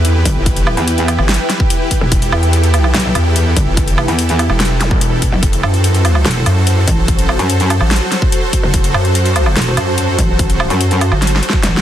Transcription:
0.00 0.24 E2 medium
0.00 5.39 E3 medium
0.00 5.39 E4 medium
0.00 6.77 E4 medium
0.00 5.39 G4 medium
0.00 0.20 A4 medium
0.00 2.08 B4 medium
0.00 5.43 B4 medium
0.00 5.43 G5 medium
0.05 closed hi-hat medium
0.25 0.34 G1 loud
0.25 kick medium
0.25 closed hi-hat medium
0.36 0.76 G1 medium
0.46 kick loud
0.46 closed hi-hat medium
0.57 closed hi-hat medium
0.67 low woodblock medium
0.77 1.17 E2 medium
0.77 closed hi-hat soft
0.88 closed hi-hat medium
0.98 closed hi-hat soft
1.08 closed hi-hat medium
1.08 low woodblock medium
1.19 1.38 G1 medium
1.19 low woodblock medium
1.29 snare loud
1.29 closed hi-hat medium
1.34 closed hi-hat medium
1.50 snare medium
1.50 closed hi-hat medium
1.60 kick loud
1.70 closed hi-hat medium
1.91 kick medium
1.91 closed hi-hat medium
2.01 2.10 E1 loud
2.12 2.31 E1 loud
2.12 11.81 A4 medium
2.12 kick loud
2.12 closed hi-hat medium
2.22 closed hi-hat medium
2.32 2.93 E2 loud
2.32 low woodblock medium
2.43 closed hi-hat soft
2.53 closed hi-hat medium
2.63 closed hi-hat soft
2.74 closed hi-hat medium
2.74 low woodblock medium
2.84 low woodblock medium
2.94 3.13 B1 loud
2.94 snare loud
2.94 closed hi-hat medium
3.00 closed hi-hat medium
3.15 3.55 E2 loud
3.15 closed hi-hat medium
3.15 low woodblock medium
3.36 closed hi-hat medium
3.57 3.65 G1 loud
3.57 kick medium
3.57 closed hi-hat medium
3.67 4.07 G1 medium
3.77 kick loud
3.77 closed hi-hat medium
3.88 closed hi-hat medium
3.98 low woodblock medium
4.08 4.48 E2 loud
4.08 closed hi-hat soft
4.19 closed hi-hat medium
4.29 closed hi-hat soft
4.39 closed hi-hat medium
4.39 low woodblock medium
4.50 4.89 E1 loud
4.50 low woodblock soft
4.60 snare loud
4.60 closed hi-hat medium
4.65 closed hi-hat medium
4.81 snare medium
4.81 closed hi-hat medium
4.81 zap medium
4.91 5.31 E1 medium
4.91 kick loud
5.01 closed hi-hat medium
5.22 kick medium
5.22 closed hi-hat medium
5.32 5.41 B1 loud
5.43 5.62 F#1 loud
5.43 11.81 F#3 medium
5.43 11.81 F#4 medium
5.43 11.81 C5 medium
5.43 kick loud
5.43 closed hi-hat medium
5.53 11.81 C5 medium
5.53 closed hi-hat medium
5.62 6.24 F#2 medium
5.62 11.81 A5 medium
5.62 low woodblock medium
5.74 closed hi-hat soft
5.84 closed hi-hat medium
5.94 closed hi-hat soft
6.05 closed hi-hat medium
6.05 low woodblock medium
6.15 low woodblock medium
6.25 6.44 E1 loud
6.25 snare loud
6.25 closed hi-hat soft
6.31 closed hi-hat medium
6.46 6.86 F#2 loud
6.46 closed hi-hat medium
6.46 low woodblock medium
6.67 closed hi-hat medium
6.88 6.96 A1 loud
6.88 kick medium
6.88 closed hi-hat medium
6.98 7.38 A1 loud
7.08 kick loud
7.08 closed hi-hat medium
7.19 closed hi-hat medium
7.29 low woodblock medium
7.39 7.79 F#2 loud
7.39 closed hi-hat soft
7.50 closed hi-hat medium
7.60 closed hi-hat soft
7.70 closed hi-hat medium
7.70 low woodblock medium
7.81 8.00 A1 medium
7.81 low woodblock medium
7.91 snare loud
7.91 closed hi-hat soft
7.96 closed hi-hat medium
8.12 snare medium
8.12 closed hi-hat medium
8.22 kick loud
8.32 closed hi-hat medium
8.53 kick medium
8.53 closed hi-hat medium
8.63 8.72 F#1 loud
8.74 8.93 F#1 medium
8.74 kick loud
8.74 closed hi-hat medium
8.84 closed hi-hat medium
8.94 9.55 F#2 loud
8.94 low woodblock medium
9.05 closed hi-hat soft
9.15 closed hi-hat medium
9.25 closed hi-hat soft
9.36 closed hi-hat medium
9.36 low woodblock medium
9.46 low woodblock medium
9.56 9.76 E1 loud
9.56 snare loud
9.56 closed hi-hat medium
9.62 closed hi-hat medium
9.77 10.17 F#2 loud
9.77 closed hi-hat medium
9.77 low woodblock medium
9.98 closed hi-hat medium
10.19 10.27 A1 loud
10.19 kick medium
10.19 closed hi-hat medium
10.29 10.69 A1 loud
10.39 kick loud
10.39 closed hi-hat medium
10.50 closed hi-hat medium
10.60 low woodblock medium
10.70 11.10 F#2 medium
10.70 closed hi-hat soft
10.81 closed hi-hat medium
10.91 closed hi-hat soft
11.01 closed hi-hat medium
11.01 low woodblock medium
11.12 11.41 G1 loud
11.12 low woodblock medium
11.22 snare medium
11.22 closed hi-hat medium
11.27 closed hi-hat medium
11.36 snare medium
11.43 closed hi-hat medium
11.50 kick loud
11.50 snare medium
11.63 11.81 A1 medium
11.63 snare medium
11.63 closed hi-hat medium
11.77 snare medium

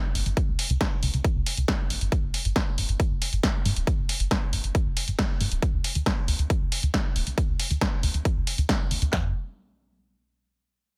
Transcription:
0.15 0.23 G#1 medium
0.15 open hi-hat medium
0.26 0.34 G#1 medium
0.26 closed hi-hat medium
0.37 kick loud
0.37 closed hi-hat medium
0.48 0.55 C#2 medium
0.59 open hi-hat loud
0.70 0.77 C#2 medium
0.70 closed hi-hat medium
0.81 kick loud
0.81 snare loud
0.81 closed hi-hat medium
1.03 1.10 C#2 medium
1.03 open hi-hat medium
1.14 1.21 C#2 medium
1.14 closed hi-hat medium
1.24 kick loud
1.24 closed hi-hat medium
1.36 1.43 C#2 medium
1.46 open hi-hat loud
1.57 1.65 C#2 medium
1.57 closed hi-hat medium
1.68 kick loud
1.68 snare loud
1.68 closed hi-hat medium
1.90 1.98 G#1 medium
1.90 open hi-hat medium
2.01 2.09 G#1 medium
2.01 closed hi-hat medium
2.12 kick loud
2.12 closed hi-hat medium
2.23 2.31 G#1 medium
2.34 open hi-hat loud
2.45 2.53 G#1 medium
2.45 closed hi-hat medium
2.56 kick loud
2.56 snare loud
2.56 closed hi-hat medium
2.78 2.85 G#1 medium
2.78 open hi-hat medium
2.89 2.96 G#1 medium
2.89 closed hi-hat medium
3.00 kick loud
3.00 closed hi-hat medium
3.11 3.18 G#1 medium
3.22 open hi-hat loud
3.32 3.40 G#1 medium
3.32 closed hi-hat medium
3.43 kick loud
3.43 snare loud
3.43 closed hi-hat medium
3.65 3.73 G#2 medium
3.65 open hi-hat medium
3.76 3.84 D#1 medium
3.76 closed hi-hat medium
3.87 kick loud
3.87 closed hi-hat medium
3.98 4.06 G#1 medium
4.09 open hi-hat loud
4.20 4.28 G#1 medium
4.20 closed hi-hat medium
4.31 kick loud
4.31 snare loud
4.31 closed hi-hat medium
4.53 4.61 G#1 loud
4.53 open hi-hat medium
4.64 4.71 G#1 medium
4.64 closed hi-hat medium
4.75 kick loud
4.75 closed hi-hat medium
4.86 4.93 G#1 medium
4.97 open hi-hat loud
5.08 5.15 G#1 medium
5.08 closed hi-hat medium
5.19 kick loud
5.19 snare loud
5.19 closed hi-hat medium
5.41 5.48 G#2 medium
5.41 open hi-hat medium
5.52 5.59 D#1 medium
5.52 closed hi-hat medium
5.62 kick loud
5.62 closed hi-hat medium
5.73 5.81 D#2 medium
5.84 open hi-hat loud
5.95 6.03 D#2 medium
5.95 closed hi-hat medium
6.06 kick loud
6.06 snare loud
6.06 closed hi-hat medium
6.28 6.36 D#2 medium
6.28 open hi-hat medium
6.39 6.47 D#2 medium
6.39 closed hi-hat medium
6.50 kick loud
6.50 closed hi-hat medium
6.61 6.69 D#2 medium
6.72 open hi-hat loud
6.83 6.91 D#2 medium
6.83 closed hi-hat medium
6.94 kick loud
6.94 snare loud
6.94 closed hi-hat medium
7.16 7.23 D#1 medium
7.16 open hi-hat medium
7.27 7.34 C#2 medium
7.27 closed hi-hat medium
7.38 kick loud
7.38 closed hi-hat medium
7.49 7.56 D#2 medium
7.60 open hi-hat loud
7.71 7.78 D#2 medium
7.71 closed hi-hat medium
7.81 kick loud
7.81 snare loud
7.81 closed hi-hat medium
8.03 8.11 D#2 medium
8.03 open hi-hat medium
8.14 8.22 D#2 medium
8.14 closed hi-hat medium
8.25 kick loud
8.25 closed hi-hat medium
8.36 8.44 D#2 medium
8.47 open hi-hat loud
8.58 8.66 D#2 medium
8.58 closed hi-hat medium
8.69 kick loud
8.69 snare loud
8.69 closed hi-hat medium
8.91 8.99 D#2 medium
8.91 open hi-hat medium
9.02 9.09 D#2 medium
9.02 closed hi-hat medium
9.13 9.33 F2 medium
9.13 kick loud
9.13 snare loud
9.13 clap medium

